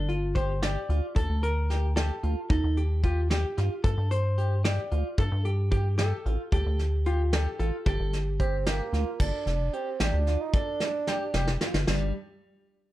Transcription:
Already playing: analog synth bass G1, clean electric guitar A4
0.09 hollow-body jazz guitar F4, closed hi-hat
0.35 clean electric guitar G4, hollow-body jazz guitar C5, kick, closed hi-hat
0.63 clean electric guitar G4, hollow-body jazz guitar D5, snare, closed hi-hat
0.89 analog synth bass D2, clean electric guitar F4, closed hi-hat
1.16 analog synth bass D2, hollow-body jazz guitar A4, clean electric guitar A4, kick, closed hi-hat
1.29 analog synth bass D2
1.43 hollow-body jazz guitar A#4, closed hi-hat
1.70 clean electric guitar G4, snare, closed hi-hat
1.96 clean electric guitar G4, hollow-body jazz guitar A4, snare, closed hi-hat
2.23 analog synth bass D2, clean electric guitar F4, closed hi-hat
2.50 analog synth bass D#2, hollow-body jazz guitar D#4, clean electric guitar A4, kick, closed hi-hat
2.64 analog synth bass D#2
2.77 hollow-body jazz guitar G4, closed hi-hat
3.04 hollow-body jazz guitar F4, clean electric guitar G4, kick, closed hi-hat
3.30 hollow-body jazz guitar G4, clean electric guitar G4, snare, closed hi-hat
3.57 analog synth bass G2, clean electric guitar F4, snare, closed hi-hat
3.84 analog synth bass G2, hollow-body jazz guitar A4, clean electric guitar A4, kick, closed hi-hat
3.98 analog synth bass G2
4.11 hollow-body jazz guitar C5, closed hi-hat
4.38 clean electric guitar G4, closed hi-hat
4.64 clean electric guitar G4, hollow-body jazz guitar D5, snare, closed hi-hat
4.91 analog synth bass D2, clean electric guitar F4, closed hi-hat
5.18 analog synth bass G2, clean electric guitar A4, hollow-body jazz guitar A4, kick, closed hi-hat
5.32 analog synth bass G2
5.45 hollow-body jazz guitar G4, closed hi-hat
5.71 hollow-body jazz guitar G4, clean electric guitar G4, kick, closed hi-hat
5.98 clean electric guitar G4, hollow-body jazz guitar A4, snare, closed hi-hat
6.26 analog synth bass A1, clean electric guitar F4, closed hi-hat
6.52 analog synth bass D2, hollow-body jazz guitar G4, clean electric guitar A4, kick, closed hi-hat
6.66 analog synth bass D2
6.79 snare, closed hi-hat
7.06 hollow-body jazz guitar F4, clean electric guitar G4, closed hi-hat
7.33 clean electric guitar G4, hollow-body jazz guitar A4, snare, closed hi-hat
7.59 analog synth bass A1, clean electric guitar F4, hollow-body jazz guitar A4, closed hi-hat
7.86 analog synth bass G1, hollow-body jazz guitar G4, clean electric guitar A4, kick, closed hi-hat
8.00 analog synth bass G1
8.13 snare, closed hi-hat
8.40 bassoon C4, clean electric guitar G4, kick, closed hi-hat
8.67 bassoon A#3, clean electric guitar G4, snare, closed hi-hat
8.93 analog synth bass D2, clean electric guitar F4, snare, closed hi-hat
9.20 analog synth bass G1, bassoon D4, clean electric guitar A4, kick, crash
9.46 analog synth bass F1, snare, closed hi-hat
9.73 bassoon C4, clean electric guitar G4, closed hi-hat
10.00 analog synth bass A1, bassoon D4, clean electric guitar G4, snare, closed hi-hat
10.13 analog synth bass D2
10.27 clean electric guitar F4, snare, closed hi-hat
10.41 bassoon D#4
10.53 bassoon D4, clean electric guitar A4, kick, closed hi-hat
10.80 snare
11.07 clean electric guitar G4, snare
11.34 analog synth bass F1, clean electric guitar G4, snare
11.47 snare
11.61 clean electric guitar F4, snare
11.74 analog synth bass G1, snare
11.87 analog synth bass G1, clean electric guitar G3, bassoon D4, snare, crash

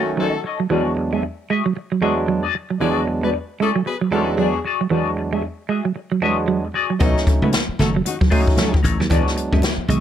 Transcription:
Already playing: tine electric piano D#3 F#3 A3 C#4, horn section F#3 C#4 D#4 F#4
0.08 muted clean electric guitar stroke
0.17 clean electric guitar F#3 A4 C#5 D#5, horn section A3 D#4 F#4 A4
0.34 muted clean electric guitar stroke
0.44 clean electric guitar A4 C#5 D#5, muted clean electric guitar stroke
0.60 clean electric guitar F#3, muted clean electric guitar stroke
0.70 tine electric piano E2 F#3 G#3 B3 D4, clean electric guitar E3 F#4 G#4 D5
0.88 muted clean electric guitar stroke
0.98 muted clean electric guitar stroke
1.13 clean electric guitar G#3 F#4 G#4 E5
1.23 muted clean electric guitar stroke
1.50 clean electric guitar G#3 F#4 G#4 E5
1.65 clean electric guitar F#3, muted clean electric guitar stroke
1.75 muted clean electric guitar stroke
1.92 clean electric guitar F#3, muted clean electric guitar stroke
2.02 tine electric piano E2 F#3 G#3 B3 D4, clean electric guitar G#3 F#4 G#4 E5
2.18 muted clean electric guitar stroke
2.28 clean electric guitar F#3, muted clean electric guitar stroke
2.43 clean electric guitar F#4 G#4 D5
2.54 muted clean electric guitar stroke
2.70 clean electric guitar F#3, muted clean electric guitar stroke
2.79 tine electric piano E2 F#3 G#3 B3 D4, clean electric guitar E3 F#4 G#4 D5, horn section D4 G#4 B4 D5
2.97 muted clean electric guitar stroke
3.08 muted clean electric guitar stroke
3.22 clean electric guitar G#3 F#4 G#4 D5, horn section B3 F#4 G#4 B4
3.35 muted clean electric guitar stroke
3.60 clean electric guitar G#3 F#4 G#4 D5, horn section A3 C#4 E4 A4
3.76 clean electric guitar F#3, muted clean electric guitar stroke
3.86 horn section B3 F#4 G#4 B4, muted clean electric guitar stroke
4.01 clean electric guitar F#3, muted clean electric guitar stroke
4.11 tine electric piano E2 F#3 G#3 B3 D4, clean electric guitar G#3 F#4, horn section A3 C#4 E4 A4
4.15 clean electric guitar G#4 D5
4.31 muted clean electric guitar stroke
4.37 clean electric guitar F#3 F#4, horn section G#3 B3 D4 G#4
4.42 clean electric guitar G#4 D5
4.56 muted clean electric guitar stroke
4.65 clean electric guitar F#4 G#4 D5, muted clean electric guitar stroke
4.81 clean electric guitar F#3, muted clean electric guitar stroke
4.90 tine electric piano E2 F#3 G#3 B3 D4, clean electric guitar E3 F#4 G#4 D5
5.07 muted clean electric guitar stroke
5.18 muted clean electric guitar stroke
5.33 clean electric guitar G#3 F#4 G#4 E5
5.43 muted clean electric guitar stroke
5.69 clean electric guitar G#3 F#4 G#4 E5
5.85 clean electric guitar F#3, muted clean electric guitar stroke
5.96 muted clean electric guitar stroke
6.12 clean electric guitar F#3, muted clean electric guitar stroke
6.21 tine electric piano E2 F#3 G3 B3 D4, clean electric guitar G#3 F#4 G#4 E5
6.28 tine electric piano G#3
6.39 muted clean electric guitar stroke
6.48 clean electric guitar F#3, muted clean electric guitar stroke
6.65 muted clean electric guitar stroke
6.74 clean electric guitar F#4 G#4 D5, muted clean electric guitar stroke
6.90 clean electric guitar F#3, muted clean electric guitar stroke
6.99 slap bass B1, tine electric piano F#3 A3 C#4 D#4, clean electric guitar B3 D#4 A4 C#5, horn section D#4 F#4 A4 D#5, kick, closed hi-hat, muted conga
7.16 muted clean electric guitar stroke, snare
7.27 muted clean electric guitar stroke, kick, closed hi-hat
7.42 slap bass C#2, clean electric guitar A3 D#4 A4 C#5, horn section B3 D#4 F#4 B4
7.52 muted clean electric guitar stroke, snare, closed hi-hat, high conga
7.69 muted slap bass stroke
7.79 slap bass F#1, horn section A3 D#4 F#4 A4, clean electric guitar A3 D#4 A4 C#5, snare, closed hi-hat, low conga
7.95 clean electric guitar F#3, muted clean electric guitar stroke
8.05 horn section F#3 C#4 D#4 F#4, muted clean electric guitar stroke, closed hi-hat, muted conga
8.21 clean electric guitar F#3, muted clean electric guitar stroke, kick
8.30 tine electric piano F#3 A3 C#4 D#4, horn section F#3 C#4 D#4 F#4, clean electric guitar A3 D#4 A4 C#5, kick, open hi-hat, muted conga
8.46 muted clean electric guitar stroke, kick
8.56 clean electric guitar F#3 D#4 A4 C#5, horn section A3 D#4 F#4 A4, snare, closed hi-hat, high conga
8.72 muted clean electric guitar stroke, kick, high conga
8.83 slap bass A1, clean electric guitar D#4 A4 C#5, muted clean electric guitar stroke, closed hi-hat, high conga
8.99 slap bass D#2, clean electric guitar F#3, muted clean electric guitar stroke, snare
9.10 slap bass E2, clean electric guitar E3 F#4 G#4 D5, tine electric piano F#3 G#3 B3 D4, kick, closed hi-hat, muted conga
9.26 muted clean electric guitar stroke, snare
9.36 muted clean electric guitar stroke, closed hi-hat, muted conga
9.52 slap bass F#2, clean electric guitar G#3 F#4 G#4 E5, kick
9.62 muted clean electric guitar stroke, snare, closed hi-hat, high conga
9.78 muted slap bass stroke
9.88 slap bass B1, clean electric guitar G#3 F#4 G#4 E5, closed hi-hat, low conga

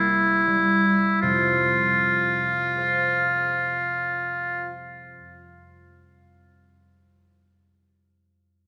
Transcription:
Already playing: harp C2 G3 A#3, oboe E4
0.09 harp E4
0.47 harp G3
0.85 harp E4
1.21 harp F2 C3, oboe F4
2.76 harp G#4 C5
2.80 harp F5

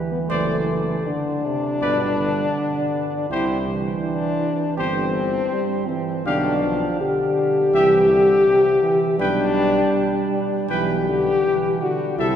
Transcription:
Already playing: euphonium E3
0.11 french horn B3
0.28 bass trombone F#1, french horn A3, trumpet C5 D5
1.06 euphonium D3, french horn D4
1.45 euphonium C3
1.81 bass trombone G1, euphonium B2, trumpet B4 D5
2.19 euphonium D3
3.30 bass trombone C2, euphonium C3, french horn E4, trumpet G4 C5
3.68 euphonium E3
4.04 french horn D4
4.77 bass trombone G1, french horn C4, trumpet G4 C5
5.52 euphonium G3
5.88 euphonium E3, french horn C4
6.25 bass trombone B1, euphonium D3, french horn D4, trumpet G4 F5
6.63 euphonium F3
7.01 euphonium D3, french horn G4
7.74 bass trombone C2, euphonium E3, trumpet G4 E5
8.11 euphonium D3
8.47 euphonium C3
8.83 euphonium E3
9.18 bass trombone B1, euphonium G3, french horn D4, trumpet B4 G5
10.69 bass trombone B1, euphonium E3, french horn G4, trumpet B4 G5
11.09 euphonium D3
11.46 euphonium E3
11.81 euphonium D3, french horn F#4
12.18 bass trombone C2, euphonium C3, french horn E4, trumpet A4 E5

